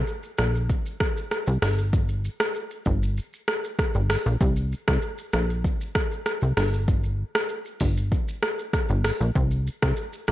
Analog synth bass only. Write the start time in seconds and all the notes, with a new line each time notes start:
0.38 A#1
1.47 C2
1.62 G1
2.86 G1
3.95 G1
4.26 A#1
4.41 C2
4.88 C2
5.33 A#1
6.42 C2
6.57 G1
7.81 G1
8.90 G1
9.21 A#1
9.35 C2
9.83 C2
10.28 A#1